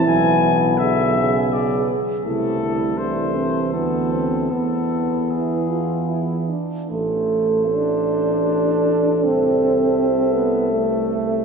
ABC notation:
X:1
M:3/4
L:1/8
Q:1/4=80
K:Am
V:1 name="Cornet"
^g2 e2 d z | A2 c2 A2 | A2 ^G3 z | c6 |
e6 |]
V:2 name="French horn section"
E2 ^G4 | E2 D C B,2 | B,2 E F E D | A6- |
A6 |]
V:3 name="Euphonium"
B,4- B, z | A,2 A,2 B, C | B,4- B, z | A6- |
A6 |]
V:4 name="Trombone" clef=bass
E,2 D, ^C,2 z | C, D, E,4 | E,4- E, z | A,2 D4 |
C3 B, A,2 |]
V:5 name="Tuba" clef=bass
B,,,4- B,,, z | C,,4 D,,2 | E,,4- E,, z | A,,,6 |
C,,6 |]